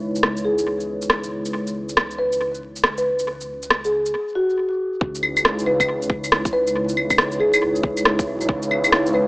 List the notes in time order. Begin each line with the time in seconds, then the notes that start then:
Already playing: C#2 G#3 D#4 E4 B4 C#5
0.16 shaker
0.23 cross-stick
0.37 shaker
0.45 G#4
0.58 shaker
0.80 shaker
1.02 shaker
1.10 cross-stick
1.24 shaker
1.45 shaker
1.67 shaker
1.89 shaker
1.97 cross-stick
2.11 shaker
2.19 B4
2.32 shaker
2.55 shaker
2.76 shaker
2.84 cross-stick
2.98 B4, shaker
3.19 shaker
3.41 shaker
3.63 shaker
3.70 cross-stick
3.85 G#4, shaker
4.06 shaker
4.35 F#4
5.00 C#2 G#3 D#4 E4 B4 C#5, kick
5.15 shaker
5.23 claves
5.37 claves, shaker
5.45 cross-stick
5.59 shaker
5.66 B4
5.80 kick, claves, shaker
6.02 shaker
6.10 kick
6.24 shaker
6.32 cross-stick
6.45 kick, shaker
6.53 B4
6.67 shaker
6.89 shaker
6.97 C#2, claves
7.10 kick, claves, shaker
7.18 cross-stick
7.32 shaker
7.40 G#4
7.54 claves, shaker
7.62 C#2
7.76 shaker
7.83 kick
7.97 shaker
8.05 cross-stick
8.19 kick, shaker
8.27 B1
8.41 shaker
8.49 C#2, kick
8.62 shaker
8.71 claves
8.84 claves, shaker
8.92 cross-stick
9.06 shaker
9.14 B4